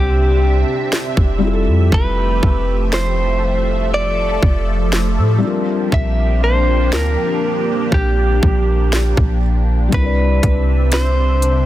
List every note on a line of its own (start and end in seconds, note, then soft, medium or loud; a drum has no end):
0.00 0.64 C2 loud
0.00 1.38 C3 medium
0.00 1.36 G3 medium
0.00 1.37 C4 medium
0.00 1.38 C4 medium
0.00 1.38 D4 medium
0.00 1.39 D4 medium
0.00 1.40 E4 medium
0.00 1.39 G4 medium
0.00 1.41 D5 medium
0.00 5.38 E5 medium
0.93 snare loud
1.17 1.69 F1 loud
1.17 kick medium
1.38 5.36 G3 medium
1.38 5.38 A3 medium
1.38 5.37 C4 medium
1.42 9.88 F3 medium
1.42 5.38 E4 medium
1.42 5.40 F4 medium
1.42 3.40 G4 medium
1.47 1.51 G#4 medium
1.53 5.44 A4 medium
1.68 1.91 F2 loud
1.92 2.40 F1 loud
1.92 2.94 B4 medium
1.92 kick loud
2.43 4.39 F1 loud
2.43 kick medium
2.93 3.89 C5 medium
2.93 snare loud
3.42 5.40 A4 medium
3.94 5.93 D5 loud
4.43 5.19 F1 loud
4.43 kick medium
4.93 snare loud
5.18 5.41 A2 loud
5.38 9.36 G3 medium
5.38 9.88 A#3 medium
5.38 9.37 C4 medium
5.38 9.88 D4 medium
5.38 9.88 G4 medium
5.42 9.38 D4 medium
5.42 9.40 F4 medium
5.47 9.41 A#4 medium
5.92 6.95 A#1 loud
5.92 6.43 E5 loud
5.92 kick loud
6.44 6.95 C5 medium
6.93 7.17 D2 medium
6.93 7.94 A#4 medium
6.93 snare loud
7.92 8.40 A#1 loud
7.92 9.39 G4 medium
7.92 kick medium
8.43 9.15 A#1 medium
8.43 kick loud
8.93 snare loud
9.17 9.89 A#1 loud
9.17 kick loud
9.89 11.66 G3 medium
9.89 11.66 C4 medium
9.89 kick loud
9.89 closed hi-hat medium
9.93 10.40 C2 loud
9.93 11.66 C3 medium
9.93 11.66 C4 medium
9.93 11.66 D4 medium
9.93 11.66 E4 medium
9.93 10.93 B4 medium
9.93 11.66 E5 medium
9.97 10.01 A#4 medium
10.04 11.66 D5 medium
10.43 11.64 C2 loud
10.43 kick medium
10.43 closed hi-hat medium
10.92 11.66 C5 medium
10.92 snare loud
10.92 closed hi-hat medium
11.42 closed hi-hat medium